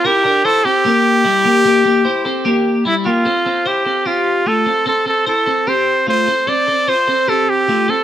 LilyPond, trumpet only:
\new Staff \with { instrumentName = "Trumpet" } { \time 4/4 \key f \major \tempo 4 = 149 g'4 a'8 g'2~ g'8~ | g'2. e'8 f'8~ | f'4 g'4 f'4 a'4 | a'8 a'8 a'4 c''4 c''4 |
d''4 c''4 a'8 g'4 a'8 | }